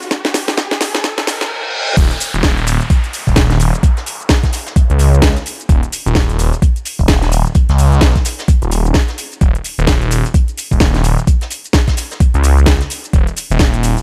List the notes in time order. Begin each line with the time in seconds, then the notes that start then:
Already playing: riser
0.02 shaker
0.11 kick, snare, closed hi-hat, shaker
0.25 snare, closed hi-hat, shaker
0.34 snare, closed hi-hat, open hi-hat, shaker
0.48 snare, shaker
0.57 kick, snare, closed hi-hat, shaker
0.71 snare, closed hi-hat, shaker
0.80 snare, closed hi-hat, open hi-hat, shaker
0.95 snare, closed hi-hat, shaker
1.04 kick, snare, closed hi-hat, reverse cymbal, shaker
1.18 snare, closed hi-hat, shaker
1.27 snare, closed hi-hat, open hi-hat, shaker
1.41 snare, closed hi-hat, shaker
1.97 D#1, kick, closed hi-hat, crash, downlifter, shaker
2.11 closed hi-hat, shaker
2.20 closed hi-hat, open hi-hat, shaker
2.34 D#1, closed hi-hat, shaker
2.43 kick, snare, closed hi-hat, shaker
2.57 closed hi-hat, shaker
2.67 closed hi-hat, open hi-hat, shaker
2.81 closed hi-hat, shaker
2.90 kick, closed hi-hat, shaker
3.04 closed hi-hat, shaker
3.13 closed hi-hat, open hi-hat, shaker
3.27 D#1, kick, shaker
3.36 kick, snare, closed hi-hat, shaker
3.50 snare, closed hi-hat, shaker
3.60 closed hi-hat, open hi-hat, shaker
3.74 closed hi-hat, shaker
3.83 kick, closed hi-hat, shaker
3.97 snare, closed hi-hat, shaker
4.06 closed hi-hat, open hi-hat, shaker
4.20 closed hi-hat, shaker
4.29 kick, snare, closed hi-hat, shaker
4.43 kick, snare, closed hi-hat, shaker
4.52 snare, closed hi-hat, open hi-hat, shaker
4.66 snare, closed hi-hat, shaker
4.76 kick, closed hi-hat, shaker
4.90 C#2, closed hi-hat, shaker
4.99 closed hi-hat, open hi-hat, shaker
5.13 closed hi-hat, shaker
5.22 kick, snare, closed hi-hat, shaker
5.36 snare, closed hi-hat, shaker
5.46 closed hi-hat, open hi-hat, shaker
5.60 closed hi-hat, shaker
5.69 D#1, kick, closed hi-hat, shaker
5.83 closed hi-hat, shaker
5.92 closed hi-hat, open hi-hat, shaker
6.06 D#1, closed hi-hat, shaker
6.15 kick, snare, closed hi-hat, shaker
6.30 closed hi-hat, shaker
6.39 closed hi-hat, open hi-hat, shaker
6.53 closed hi-hat, shaker
6.62 kick, closed hi-hat, shaker
6.76 closed hi-hat, shaker
6.85 closed hi-hat, open hi-hat, shaker
6.99 D#1, kick, shaker
7.08 kick, snare, closed hi-hat, shaker
7.22 snare, closed hi-hat, shaker
7.32 closed hi-hat, open hi-hat, shaker
7.46 closed hi-hat, shaker
7.55 kick, closed hi-hat, shaker
7.69 C#2, snare, closed hi-hat, shaker
7.78 closed hi-hat, open hi-hat, shaker
7.92 closed hi-hat, shaker
8.01 kick, snare, closed hi-hat, shaker
8.15 kick, snare, closed hi-hat, shaker
8.25 snare, closed hi-hat, open hi-hat, shaker
8.39 snare, closed hi-hat, shaker
8.48 kick, closed hi-hat, shaker
8.62 D#1, closed hi-hat, shaker
8.71 closed hi-hat, open hi-hat, shaker
8.85 closed hi-hat, shaker
8.94 kick, snare, closed hi-hat, shaker
9.08 snare, closed hi-hat, shaker
9.18 closed hi-hat, open hi-hat, shaker
9.32 closed hi-hat, shaker
9.41 D#1, kick, closed hi-hat, shaker
9.55 closed hi-hat, shaker
9.64 closed hi-hat, open hi-hat, shaker
9.78 D#1, closed hi-hat, shaker
9.87 kick, snare, closed hi-hat, shaker
10.01 closed hi-hat, shaker
10.11 closed hi-hat, open hi-hat, shaker
10.25 closed hi-hat, shaker
10.34 kick, closed hi-hat, shaker
10.48 closed hi-hat, shaker
10.57 closed hi-hat, open hi-hat, shaker
10.71 D#1, kick, shaker
10.80 kick, snare, closed hi-hat, shaker
10.94 snare, closed hi-hat, shaker
11.04 closed hi-hat, open hi-hat, shaker
11.18 closed hi-hat, shaker
11.27 kick, closed hi-hat, shaker
11.41 snare, closed hi-hat, shaker
11.50 closed hi-hat, open hi-hat, shaker
11.64 closed hi-hat, shaker
11.73 kick, snare, closed hi-hat, shaker
11.88 kick, snare, closed hi-hat, shaker
11.97 snare, closed hi-hat, open hi-hat, shaker
12.11 snare, closed hi-hat, shaker
12.20 kick, closed hi-hat, shaker
12.34 C#2, closed hi-hat, shaker
12.44 closed hi-hat, open hi-hat, shaker
12.57 closed hi-hat, shaker
12.66 kick, snare, closed hi-hat, shaker
12.81 snare, closed hi-hat, shaker
12.90 closed hi-hat, open hi-hat, shaker
13.04 closed hi-hat, shaker
13.13 D#1, kick, closed hi-hat, shaker
13.27 closed hi-hat, shaker
13.37 closed hi-hat, open hi-hat, shaker
13.50 D#1, closed hi-hat, shaker
13.59 kick, snare, closed hi-hat, shaker
13.74 closed hi-hat, shaker
13.83 closed hi-hat, open hi-hat, shaker
13.97 closed hi-hat, shaker